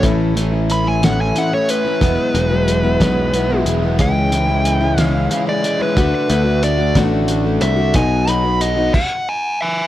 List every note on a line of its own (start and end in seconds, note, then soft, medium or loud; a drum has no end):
0.02 1.31 A1 medium
0.02 0.36 A2 medium
0.02 0.33 E3 medium
0.02 0.35 A3 medium
0.02 0.35 C#4 medium
0.02 0.37 E4 medium
0.02 kick loud
0.02 closed hi-hat medium
0.35 0.52 E3 medium
0.35 0.53 A3 medium
0.35 0.52 C#4 medium
0.35 0.50 E4 medium
0.35 closed hi-hat medium
0.52 0.87 A3 soft
0.52 0.85 C#4 soft
0.52 0.83 E4 soft
0.70 2.67 E3 medium
0.70 0.87 B5 medium
0.70 closed hi-hat medium
0.84 1.02 A3 soft
0.84 1.02 C#4 soft
0.84 1.02 E4 medium
0.84 1.04 G#5 medium
1.02 1.35 A2 medium
1.02 1.34 E3 medium
1.02 1.35 A3 medium
1.02 1.36 C#4 medium
1.02 1.36 E4 medium
1.02 1.19 F#5 medium
1.02 snare loud
1.02 closed hi-hat medium
1.21 1.38 G#5 medium
1.35 1.52 E3 medium
1.35 1.52 A3 medium
1.35 1.52 C#4 medium
1.35 1.50 E4 medium
1.35 1.53 F#5 medium
1.35 closed hi-hat medium
1.52 1.86 A3 soft
1.52 1.85 C#4 soft
1.52 1.83 E4 soft
1.52 1.70 C#5 medium
1.69 2.02 A3 medium
1.69 3.63 B4 loud
1.69 closed hi-hat medium
1.85 2.01 A3 soft
1.85 2.02 C#4 medium
1.85 2.01 E4 medium
2.00 2.17 E1 medium
2.00 2.34 E2 medium
2.00 2.34 B2 medium
2.00 2.33 F#3 medium
2.00 2.34 G#3 medium
2.00 2.35 B3 medium
2.00 2.35 E4 medium
2.00 kick loud
2.00 closed hi-hat medium
2.34 2.96 E1 medium
2.34 3.99 B2 medium
2.34 2.51 F#3 medium
2.34 2.51 G#3 medium
2.34 2.48 E4 medium
2.34 closed hi-hat medium
2.49 2.84 F#3 soft
2.49 2.84 G#3 soft
2.49 2.83 B3 medium
2.49 2.82 E4 medium
2.68 3.99 F#3 medium
2.68 closed hi-hat medium
2.83 2.99 F#3 medium
2.83 3.00 G#3 medium
2.83 3.00 B3 medium
2.83 3.00 E4 medium
3.00 3.62 B1 medium
3.00 3.33 E2 medium
3.00 3.33 B2 medium
3.00 3.32 F#3 medium
3.00 3.33 G#3 medium
3.00 3.33 B3 medium
3.00 3.34 E4 medium
3.00 kick medium
3.00 snare loud
3.00 closed hi-hat medium
3.33 3.49 F#3 medium
3.33 3.50 G#3 medium
3.33 3.49 B3 medium
3.33 3.48 E4 medium
3.33 closed hi-hat medium
3.50 3.84 F#3 soft
3.50 3.83 G#3 soft
3.50 3.82 B3 medium
3.50 3.81 E4 medium
3.66 3.97 E1 medium
3.66 3.99 G#3 medium
3.66 closed hi-hat medium
3.82 3.98 F#3 soft
3.82 3.98 G#3 soft
3.82 3.99 B3 soft
3.82 3.99 E4 medium
3.98 5.27 C#2 medium
3.98 4.31 C#3 medium
3.98 4.29 E3 medium
3.98 4.31 G#3 medium
3.98 4.32 C#4 medium
3.98 4.33 E4 medium
3.98 5.02 G5 loud
3.98 kick loud
3.98 closed hi-hat medium
4.30 4.47 E3 medium
4.30 4.48 G#3 medium
4.30 4.48 C#4 medium
4.30 4.46 E4 medium
4.30 closed hi-hat medium
4.47 4.82 G#3 soft
4.47 4.81 C#4 soft
4.47 4.79 E4 medium
4.65 5.97 E3 medium
4.65 closed hi-hat medium
4.81 4.97 G#3 medium
4.81 4.98 C#4 medium
4.81 4.97 E4 medium
4.97 5.30 C#3 medium
4.97 5.28 E3 medium
4.97 5.30 G#3 medium
4.97 5.31 C#4 loud
4.97 5.31 E4 loud
4.97 snare loud
4.97 closed hi-hat medium
5.02 5.44 F5 loud
5.30 5.46 E3 medium
5.30 5.47 G#3 medium
5.30 5.48 C#4 medium
5.30 5.45 E4 medium
5.30 closed hi-hat medium
5.47 5.81 G#3 soft
5.47 5.78 E4 soft
5.47 5.80 D5 medium
5.64 5.97 G#3 medium
5.64 closed hi-hat medium
5.79 5.97 G#3 soft
5.79 5.97 C#4 medium
5.79 5.96 E4 medium
5.79 6.13 B4 medium
5.96 6.12 D2 medium
5.96 6.27 D3 medium
5.96 6.28 A3 medium
5.96 6.29 D4 medium
5.96 6.30 F#4 medium
5.96 kick loud
5.96 closed hi-hat medium
6.15 6.62 B4 medium
6.28 6.92 D2 medium
6.28 6.45 D3 medium
6.28 6.46 A3 medium
6.28 6.44 D4 medium
6.28 6.43 F#4 medium
6.28 closed hi-hat medium
6.44 6.79 A3 soft
6.44 6.78 D4 soft
6.44 6.77 F#4 medium
6.63 7.95 D3 medium
6.63 6.95 D5 loud
6.63 closed hi-hat medium
6.78 6.95 A3 soft
6.78 6.95 D4 medium
6.78 6.95 F#4 medium
6.95 7.58 A1 medium
6.95 7.26 D3 medium
6.95 7.27 A3 medium
6.95 7.29 D4 medium
6.95 7.29 F#4 medium
6.95 kick medium
6.95 snare loud
6.95 closed hi-hat medium
7.27 7.44 D3 medium
7.27 7.45 A3 medium
7.27 7.44 D4 medium
7.27 7.42 F#4 medium
7.27 closed hi-hat medium
7.43 7.79 A3 soft
7.43 7.77 D4 soft
7.43 7.75 F#4 medium
7.61 7.93 C2 medium
7.61 7.95 A3 medium
7.61 7.94 E5 loud
7.61 closed hi-hat medium
7.76 7.95 A3 soft
7.76 7.95 D4 medium
7.76 7.94 F#4 medium
7.94 8.90 B1 loud
7.94 8.27 B2 medium
7.94 8.25 F#3 medium
7.94 8.26 B3 medium
7.94 8.27 D#4 medium
7.94 8.28 F#4 medium
7.94 8.29 G#5 medium
7.94 kick loud
7.94 closed hi-hat loud
8.26 8.43 F#3 medium
8.26 8.44 B3 medium
8.26 8.44 D#4 medium
8.26 8.42 F#4 medium
8.26 9.25 B5 loud
8.26 closed hi-hat medium
8.43 8.77 B3 soft
8.43 8.76 D#4 soft
8.43 8.75 F#4 medium
8.61 8.95 F#3 medium
8.61 8.92 D#5 medium
8.61 closed hi-hat medium
8.76 8.95 B3 soft
8.76 8.94 D#4 medium
8.76 8.93 F#4 medium
8.94 9.60 F#5 loud
8.94 kick loud
8.94 crash loud
9.29 9.60 G#5 loud
9.61 9.87 E5 loud
9.61 9.87 G#5 loud